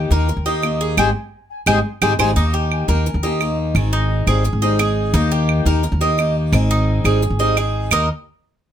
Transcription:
Already playing: D#3 A#3 D#4 G4
0.10 D#2 A#3 D#4 G4 A#4
0.29 muted steel-string acoustic guitar stroke
0.37 D#2
0.46 A#3 D#4 G4 D#5
0.62 D#3 A#3 D#4 G4, claves
0.81 G#4
0.97 G#1 G#3 C4 D#4 G4 G#4 C5 G#5, claves
1.66 G#1 G#3 C4 D#4 G4 G#4 C5 G#5, claves
2.02 G#1 G#3 C4 D#4 G4 G#4 C5 G#5, claves
2.19 G#1 G#3 C4 D#4 G4 G#4 C5 G#5, claves
2.36 D#2 D#3 A#3 D#4 G4
2.54 G4
2.72 claves
2.88 D#2 A#3 D#4 G4 A#4
3.06 muted steel-string acoustic guitar stroke
3.14 D#2
3.23 A#3 D#4 G4 D#5
3.40 D#3 A#3 D#4 G4, claves
3.75 G#1 D#3 C4 D#4 G#4, claves
3.93 D#4
4.27 G#1 G3 C4 D#4 G#4, claves
4.44 muted steel-string acoustic guitar stroke
4.53 G#1
4.62 G3 C4 D#4 G#4 D#5
4.79 C4 D#4 G#4, claves
5.14 D#2 D#3 A#3 D#4 G4
5.32 G4
5.49 claves
5.65 D#2 A#3 D#4 G4 A#4
5.83 muted steel-string acoustic guitar stroke
5.92 D#2
6.01 A#3 D#4 G4 D#5
6.18 D#3 A#3 D#4 G4, claves
6.52 G#1 D#3 C4 D#4 G#4, claves
6.71 D#4
7.04 G#1 G3 C4 D#4 G#4, claves
7.22 muted steel-string acoustic guitar stroke
7.30 G#1
7.39 G3 C4 D#4 G#4 D#5
7.57 C4 D#4 G#4, claves
7.91 D#2 D#3 A#3 D#4 G4 A#4 D#5, claves

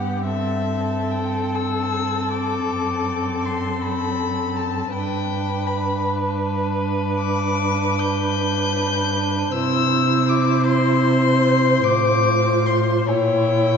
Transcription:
Already playing: G2 B3 G4 F#5
0.25 C4 A4 E5
1.11 G5
1.55 E6
2.32 D6
2.70 F#2
3.45 C6
3.82 B5
4.57 A5
4.93 G2 D4 B4 G5
5.67 B5
7.18 D6
8.00 G6
9.52 C3 E4 C5 E6
10.29 D6
10.67 C6
11.84 A2 F4 D6
12.66 C6
13.08 A#2 E4 C#5 G5

